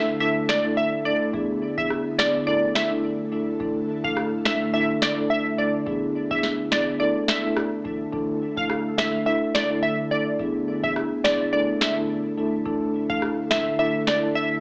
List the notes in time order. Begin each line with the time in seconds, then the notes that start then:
Already playing: D3 A3 D4 E4 A4
0.20 A3 D4 E4 A4 E5
0.49 D5, finger snap, snare
0.64 A3 D4 E4 A4
0.77 E5
1.05 A3 D4 E4 A4 D5
1.33 D3 B3 D4 E4 G#4, kick
1.78 B3 D4 E4 G#4 E5, kick
1.90 cross-stick
2.18 B3 D4 E4 G#4 D5, finger snap, kick, snare
2.47 A3 D4 E4 A4 D5
2.75 E5, finger snap, snare
2.91 A3 D4 E4 A4
3.32 A3 D4 E4 A4
3.60 D3 A3 D4 E4 A4, kick
4.04 A3 D4 E4 A4 F5, kick
4.17 cross-stick
4.45 A3 D4 E4 A4 E5, finger snap, kick, snare
4.73 A3 D4 E4 A4 E5
5.02 D5, finger snap, snare
5.17 A3 D4 E4 A4
5.30 E5
5.58 A3 D4 E4 A4 D5
5.86 B3 D4 E4 G#4, kick
6.30 B3 D4 E4 G#4 E5, kick
6.43 snare
6.71 B3 D4 E4 G#4 D5, finger snap, kick, snare
7.00 D3 A3 D4 E4 A4 D5
7.28 E5, finger snap, snare
7.44 A3 D4 E4 A4
7.57 cross-stick
7.84 A3 D4 E4 A4, kick
8.13 A3 D4 E4 A4, kick
8.57 A3 D4 E4 A4 F5, kick
8.70 cross-stick
8.98 A3 D4 E4 A4 E5, finger snap, kick, snare
9.26 A3 D4 E4 A4 E5
9.55 D5, finger snap, snare
9.70 A3 D4 E4 A4
9.83 E5
10.11 A3 D4 E4 A4 D5
10.39 B3 D4 E4 G#4, kick
10.83 B3 D4 E4 G#4 E5, kick
10.96 cross-stick
11.24 B3 D4 E4 G#4 D5, finger snap, kick, snare
11.52 A3 D4 E4 A4 D5
11.81 E5, finger snap, snare
11.97 A3 D4 E4 A4
12.37 A3 D4 E4 A4
12.66 D3 A3 D4 E4 A4, kick
13.10 A3 D4 E4 A4 F5, kick
13.22 cross-stick
13.51 A3 D4 E4 A4 E5, finger snap, kick, snare
13.79 A3 D4 E4 A4 E5
14.07 D5, finger snap, snare
14.23 A3 D4 E4 A4
14.35 E5